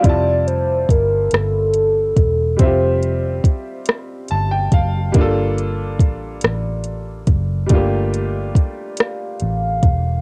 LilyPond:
<<
  \new Staff \with { instrumentName = "Soft synth lead" } { \time 6/8 \key f \major \tempo 4. = 47 d''8 c''8 bes'8 a'4. | c''4 r2 | r2. | r4. f''4. | }
  \new Staff \with { instrumentName = "Grand piano" } { \time 6/8 \key f \major << { d''16 r2 r8. | r2 a''16 g''16 f''8 | r2. | r2. | } \\ { <g c' e' f' a''>2. | <g c' f' g' e''>2. | <g bes d' f' a'>2. | <g a bes d' f' g'>2. | } >> }
  \new Staff \with { instrumentName = "Fingered electric bass" } { \clef bass \time 6/8 \key f \major f,,4 g,,8 g,,4 e,,8 | f,,4 r4 g,,8 fis,,8 | g,,4 a,,8 a,,4 fis,,8 | g,,4 r4 a,,8 e,,8 | }
  \new DrumStaff \with { instrumentName = "Drums" } \drummode { \time 6/8 <hh bd>8 hh8 <hh bd>8 <hh ss>8 hh8 <hh bd>8 | <hh bd>8 hh8 <hh bd>8 <hh ss>8 hh8 <hh bd>8 | <hh bd>8 hh8 <hh bd>8 <hh ss>8 hh8 <hh bd>8 | <hh bd>8 hh8 <hh bd>8 <hh ss>8 hh8 <hh bd>8 | }
>>